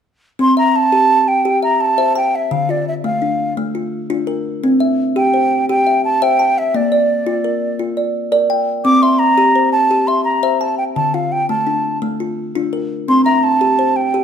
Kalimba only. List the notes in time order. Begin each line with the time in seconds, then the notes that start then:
0.39 C4
0.57 E5
0.92 G4
1.45 G4
1.63 E5
1.98 C5 E5
2.15 A5
2.51 D3
2.69 F4
3.04 A3
3.22 D4
3.57 A3
3.75 F4
4.10 D4 F4
4.27 A#4
4.64 C4
4.80 E5
5.16 G4
5.34 C5
5.69 G4
5.87 E5
6.22 C5 E5
6.39 A5
6.74 A#3
6.92 D5
7.27 F4
7.44 A#4
7.79 F4
7.97 D5
8.32 A#4 D5
8.50 G5
8.85 C4
9.03 E5
9.38 G4
9.56 C5
9.91 G4
10.08 E5
10.43 C5 E5
10.61 A5
10.96 D3
11.14 F4
11.49 A3
11.67 D4
12.02 A3
12.20 F4
12.55 D4 F4
12.73 A#4
13.08 C4
13.26 E5
13.61 G4
13.79 C5
14.14 G4